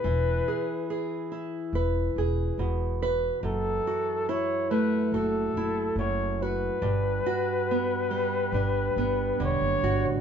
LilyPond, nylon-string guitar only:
\new Staff \with { instrumentName = "Nylon-string guitar" } { \time 4/4 \key e \mixolydian \tempo 4 = 71 << { r8 gis'8 gis'4 b'8 gis'4 b'8 | r8 fis'8 e'4 fis'8 e'4 fis'8 | r8 fis'8 b4 d'8 b4 fis'8 | } \\ { e4. e'4. b,4 | fis,4. a4. fis,4 | g,4. g4. d4 | } >> }